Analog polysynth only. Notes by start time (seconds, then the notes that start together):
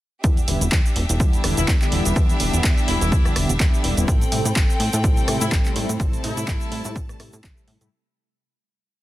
0.23 D3 G3 B3 E4
0.47 D3 G3 B3 E4
1.20 D3 G3 B3 E4
1.43 D3 G3 B3 E4
1.57 D3 G3 B3 E4
1.81 D3 G3 B3 E4
2.15 D3 G3 B3
2.39 D3 G3 B3 E4
3.25 D3 G3 B3 E4
3.36 D3 G3 B3 E4
3.60 D3 B3 E4
3.97 D3 G3 B3 E4
4.32 C3 G3 A3 E4
5.03 C3 G3 A3 E4
5.27 C3 G3 A3 E4
5.41 C3 G3 A3 E4
5.65 C3 G3 A3 E4
5.99 C3 G3 A3 E4
6.23 C3 G3 A3 E4
7.09 C3 G3 A3 E4
7.19 C3 G3 A3 E4
7.81 C3 G3 A3 E4